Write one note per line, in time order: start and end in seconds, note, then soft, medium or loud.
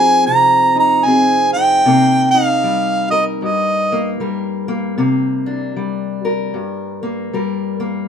0.00 1.84 F3 medium
0.00 1.06 C4 medium
0.00 0.75 D#4 medium
0.00 1.07 G#4 medium
0.00 0.26 G#5 loud
0.26 1.84 C3 medium
0.26 0.76 A#5 loud
0.75 1.55 D#4 medium
0.79 1.07 A#5 medium
1.05 1.86 C4 medium
1.05 1.82 G#4 medium
1.05 1.53 G#5 medium
1.53 2.34 D#4 medium
1.53 2.28 G5 loud
1.85 3.42 C3 medium
1.85 3.90 A#3 medium
2.31 5.46 D#4 medium
2.31 3.06 F5 medium
2.64 4.20 G3 medium
3.11 4.20 A#4 medium
3.11 3.25 D#5 medium
3.42 4.98 G2 medium
3.42 4.17 D#5 medium
3.92 4.67 A#3 medium
4.20 5.76 G3 medium
4.20 4.95 A#4 medium
4.68 4.97 A#3 medium
4.98 6.55 C3 medium
4.98 7.02 A#3 medium
5.46 8.08 D4 medium
5.76 7.33 G3 medium
6.25 7.33 A#4 medium
6.54 8.08 G2 medium
7.03 7.79 A#3 medium
7.33 8.08 G3 medium
7.33 8.08 A#4 medium
7.80 8.08 A#3 medium